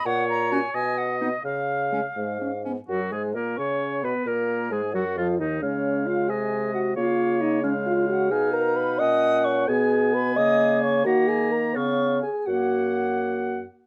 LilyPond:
<<
  \new Staff \with { instrumentName = "Flute" } { \time 6/8 \key fis \major \tempo 4. = 87 fis''8 ais''8 gis''8 gis''8 fis''8 dis''8 | eis''2~ eis''8 r8 | fis''8 gis''8 ais''8 cis'''4 b''8 | ais''4 gis''8 fis''8 eis''8 dis''8 |
cis''4 eis''8 gis''4 fis''8 | eis''4 dis''8 cis''8 eis''8 fis''8 | gis''8 ais''8 b''8 dis'''4 cis'''8 | gis''4 b''8 dis'''4 cis'''8 |
fis''8 gis''8 ais''8 cis'''4 gis''8 | fis''2~ fis''8 r8 | }
  \new Staff \with { instrumentName = "Oboe" } { \time 6/8 \key fis \major cis''4. dis''4. | eis''2~ eis''16 r8. | fis'8 gis'8 ais'8 cis''4 b'8 | ais'4 gis'8 fis'8 eis'8 dis'8 |
eis''4. dis''4. | cis''4. eis''4. | eis''4. fis''4. | gis''2. |
ais''4. eis''4 r8 | fis''2~ fis''8 r8 | }
  \new Staff \with { instrumentName = "French horn" } { \time 6/8 \key fis \major r4 cis'16 r4 r16 b16 r16 | r4 gis16 r16 gis8 cis'8 b8 | fis'8 gis'8 ais'8 cis''4 b'8 | ais'4 gis'8 fis'8 eis'8 dis'8 |
cis'4 eis'8 gis'4 fis'8 | eis'4 dis'8 cis'8 eis'8 fis'8 | gis'8 ais'8 b'8 dis''4 cis''8 | gis'4 b'8 dis''4 cis''8 |
fis'8 gis'8 ais'8 cis''4 gis'8 | fis'2~ fis'8 r8 | }
  \new Staff \with { instrumentName = "Clarinet" } { \time 6/8 \key fis \major r4 fis'16 r4 r16 dis'16 r16 | r4 cis'16 r4 r16 cis'16 r16 | fis8 gis8 ais8 cis'4 b8 | ais4 gis8 fis8 eis8 dis8 |
gis2. | ais4. gis4. | dis'4. cis'4. | b4. ais4. |
ais4. b4 r8 | ais2~ ais8 r8 | }
  \new Staff \with { instrumentName = "Bassoon" } { \clef bass \time 6/8 \key fis \major ais,4. b,4. | cis4. gis,4. | fis,8 gis,8 ais,8 cis4 b,8 | ais,4 gis,8 fis,8 eis,8 dis,8 |
cis4. bis,4. | cis2. | b,4. ais,4. | b,4. cis4. |
dis4. cis4 r8 | fis,2~ fis,8 r8 | }
>>